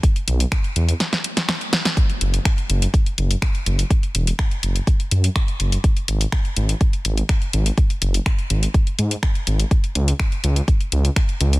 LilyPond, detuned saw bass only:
\new Staff \with { instrumentName = "Detuned saw bass" } { \clef bass \time 4/4 \key e \major \tempo 4 = 124 r8 b,,8 r8 e,8 r2 | r8 fis,,8 r8 fis,,8 r8 fis,,8 r8 fis,,8 | r8 e,,8 r8 fis,,8 r8 fis,8 r8 fis,,8 | r8 gis,,8 r8 gis,,8 r8 gis,,8 r8 gis,,8 |
r8 fis,,8 r8 gis,,8 r8 gis,8 r8 gis,,8 | r8 cis,8 r8 cis,8 r8 cis,8 r8 cis,8 | }